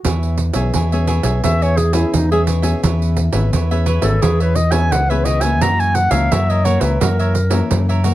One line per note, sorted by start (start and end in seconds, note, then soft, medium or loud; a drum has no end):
0.04 0.49 E2 medium
0.04 0.71 E3 medium
0.04 0.37 E4 soft
0.04 0.37 G#4 soft
0.04 0.37 C#5 medium
0.04 0.37 E5 soft
0.04 pandeiro medium
0.23 pandeiro soft
0.37 muted cavaquinho stroke soft
0.37 pandeiro soft
0.53 0.70 B1 medium
0.53 0.85 B3 medium
0.53 0.85 C#4 medium
0.53 0.85 G#4 medium
0.53 0.72 G#4 medium
0.53 0.72 C#5 medium
0.53 0.72 E5 medium
0.53 pandeiro medium
0.74 1.19 E2 medium
0.74 1.40 B2 medium
0.74 0.90 E4 soft
0.74 0.91 G#4 medium
0.74 0.91 C#5 soft
0.74 0.91 E5 medium
0.74 pandeiro medium
0.92 1.21 B3 medium
0.92 1.22 C#4 medium
0.92 1.22 G#4 medium
0.92 1.06 G#4 medium
0.92 1.07 C#5 medium
0.92 1.07 E5 medium
0.92 pandeiro soft
1.07 1.24 E4 medium
1.07 1.23 G#4 medium
1.07 1.23 C#5 medium
1.07 1.22 E5 medium
1.07 pandeiro medium
1.23 1.40 B1 medium
1.23 1.37 B3 medium
1.23 1.37 C#4 medium
1.23 1.37 G#4 medium
1.23 1.42 G#4 medium
1.23 1.41 C#5 medium
1.23 1.41 E5 medium
1.23 pandeiro medium
1.43 2.03 E2 medium
1.43 2.10 E3 medium
1.43 1.77 B3 medium
1.43 1.77 C#4 medium
1.43 1.60 E4 soft
1.43 1.60 G#4 soft
1.43 1.77 G#4 medium
1.43 1.60 C#5 soft
1.43 1.64 E5 medium
1.43 1.60 E5 medium
1.43 pandeiro medium
1.61 1.76 G#4 soft
1.61 1.76 C#5 medium
1.61 1.79 C#5 medium
1.61 1.76 E5 medium
1.61 pandeiro soft
1.77 1.95 G#4 medium
1.77 muted cavaquinho stroke soft
1.77 pandeiro medium
1.93 2.24 B3 medium
1.93 2.24 C#4 medium
1.93 2.15 E4 medium
1.93 2.24 G#4 medium
1.93 2.29 G#4 medium
1.93 2.29 C#5 medium
1.93 2.28 E5 medium
1.93 pandeiro medium
2.14 2.73 E2 medium
2.14 2.80 B2 medium
2.14 2.31 D#4 medium
2.14 pandeiro medium
2.32 2.61 B3 medium
2.32 2.61 C#4 medium
2.32 2.42 G#4 medium
2.32 2.46 G#4 medium
2.32 2.61 G#4 medium
2.32 2.47 C#5 medium
2.32 2.47 E5 medium
2.32 pandeiro soft
2.47 2.63 E4 soft
2.47 2.63 G#4 soft
2.47 2.62 C#5 soft
2.47 2.61 E5 medium
2.47 pandeiro medium
2.62 3.28 B3 medium
2.62 3.29 C#4 medium
2.62 3.29 G#4 medium
2.62 2.81 G#4 medium
2.62 2.80 C#5 medium
2.62 2.80 E5 medium
2.62 pandeiro medium
2.83 3.28 E2 medium
2.83 3.49 E3 medium
2.83 3.15 E4 soft
2.83 3.16 B4 soft
2.83 3.16 C#5 soft
2.83 3.16 E5 medium
2.83 pandeiro medium
3.02 pandeiro soft
3.17 muted cavaquinho stroke soft
3.17 pandeiro medium
3.32 3.49 G#1 medium
3.32 3.63 B3 medium
3.32 3.63 C#4 medium
3.32 3.64 G#4 medium
3.32 3.51 B4 medium
3.32 3.50 C#5 medium
3.32 3.50 E5 medium
3.32 pandeiro medium
3.53 3.97 E2 medium
3.53 4.19 E3 medium
3.53 3.69 E4 soft
3.53 3.69 B4 soft
3.53 3.69 C#5 medium
3.53 3.70 E5 medium
3.53 pandeiro medium
3.71 4.00 B3 medium
3.71 4.00 C#4 medium
3.71 4.00 G#4 medium
3.71 3.85 B4 medium
3.71 3.86 C#5 medium
3.71 3.86 E5 medium
3.71 pandeiro soft
3.86 4.03 E4 medium
3.86 4.02 B4 medium
3.86 4.01 C#5 medium
3.86 4.00 E5 medium
3.86 pandeiro medium
4.02 4.18 G#1 medium
4.02 4.15 B3 medium
4.02 4.15 C#4 medium
4.02 4.16 G#4 medium
4.02 4.24 A4 medium
4.02 4.20 B4 medium
4.02 4.20 C#5 medium
4.02 4.19 E5 medium
4.02 pandeiro medium
4.22 4.92 E2 medium
4.22 4.89 E3 medium
4.22 4.55 B3 medium
4.22 4.55 C#4 medium
4.22 4.38 E4 medium
4.22 4.43 G#4 medium
4.22 4.56 G#4 medium
4.22 4.38 B4 soft
4.22 4.39 C#5 soft
4.22 4.39 E5 medium
4.22 pandeiro medium
4.40 4.57 B4 medium
4.40 4.55 B4 medium
4.40 4.55 C#5 medium
4.40 4.55 E5 medium
4.40 pandeiro soft
4.55 4.73 D#5 medium
4.55 muted cavaquinho stroke soft
4.55 pandeiro medium
4.71 5.03 B3 medium
4.71 5.03 C#4 medium
4.71 5.03 G#4 medium
4.71 5.07 B4 soft
4.71 5.07 C#5 medium
4.71 5.07 E5 medium
4.71 4.94 G#5 medium
4.71 pandeiro medium
4.92 5.62 C#2 medium
4.92 5.41 E3 medium
4.92 5.12 F#5 medium
4.92 pandeiro medium
5.10 5.40 B3 medium
5.10 5.40 C#4 medium
5.10 5.40 G#4 medium
5.10 5.26 B4 medium
5.10 5.25 B4 medium
5.10 5.25 C#5 medium
5.10 5.25 E5 medium
5.10 pandeiro soft
5.25 5.42 E4 soft
5.25 5.42 B4 medium
5.25 5.41 C#5 medium
5.25 5.43 D#5 medium
5.25 5.40 E5 medium
5.25 pandeiro medium
5.41 6.07 E3 medium
5.41 6.08 A#3 medium
5.41 6.08 C#4 medium
5.41 5.60 B4 soft
5.41 5.59 C#5 medium
5.41 5.59 E5 medium
5.41 5.64 G#5 medium
5.41 pandeiro medium
5.61 6.06 F#2 medium
5.61 6.28 F#2 medium
5.61 5.94 F#4 soft
5.61 5.94 A#4 medium
5.61 5.94 C#5 medium
5.61 5.94 E5 medium
5.61 5.82 A#5 medium
5.61 pandeiro medium
5.80 5.96 G#5 medium
5.80 pandeiro soft
5.95 6.13 F#5 medium
5.95 muted cavaquinho stroke soft
5.95 pandeiro medium
6.11 6.27 C#2 medium
6.11 6.60 E3 medium
6.11 6.60 A#3 medium
6.11 6.60 C#4 medium
6.11 6.29 A#4 medium
6.11 6.29 C#5 medium
6.11 6.28 E5 medium
6.11 6.33 F5 medium
6.11 pandeiro medium
6.31 6.76 F#2 medium
6.31 6.98 C#3 medium
6.31 6.47 F#4 soft
6.31 6.48 A#4 medium
6.31 6.48 C#5 medium
6.31 6.52 E5 medium
6.31 6.48 E5 medium
6.31 pandeiro medium
6.50 6.64 A#4 medium
6.50 6.64 C#5 medium
6.50 6.66 D#5 medium
6.50 6.65 E5 medium
6.50 pandeiro soft
6.65 6.95 E3 medium
6.65 6.95 A#3 medium
6.65 6.95 C#4 medium
6.65 6.82 F#4 medium
6.65 6.81 A#4 medium
6.65 6.82 C#5 medium
6.65 6.80 C#5 medium
6.65 6.79 E5 medium
6.65 pandeiro medium
6.81 6.97 C#2 medium
6.81 6.99 A#4 medium
6.81 7.03 B4 medium
6.81 6.98 C#5 medium
6.81 6.98 E5 medium
6.81 pandeiro medium
7.00 7.67 F#2 medium
7.00 7.61 F#2 medium
7.00 7.34 E3 medium
7.00 7.34 A#3 medium
7.00 7.34 C#4 medium
7.00 7.17 F#4 soft
7.00 7.17 A#4 soft
7.00 7.71 A#4 medium
7.00 7.17 C#5 soft
7.00 7.18 E5 soft
7.00 pandeiro medium
7.19 7.33 A#4 medium
7.19 7.34 C#5 medium
7.19 7.34 E5 medium
7.19 pandeiro soft
7.34 muted cavaquinho stroke soft
7.34 pandeiro medium
7.50 7.99 E3 medium
7.50 7.99 A#3 medium
7.50 7.99 C#4 medium
7.50 7.86 A#4 medium
7.50 7.86 C#5 medium
7.50 7.85 E5 medium
7.50 pandeiro medium
7.71 8.14 F#2 medium
7.71 8.14 C#3 medium
7.71 pandeiro medium
7.89 8.03 A#4 medium
7.89 8.04 C#5 medium
7.89 8.04 E5 medium
7.89 pandeiro soft
8.04 8.14 E3 medium
8.04 8.14 A#3 medium
8.04 8.14 C#4 medium
8.04 8.14 F#4 soft
8.04 8.14 A#4 soft
8.04 8.14 C#5 medium
8.04 8.14 E5 medium
8.04 pandeiro medium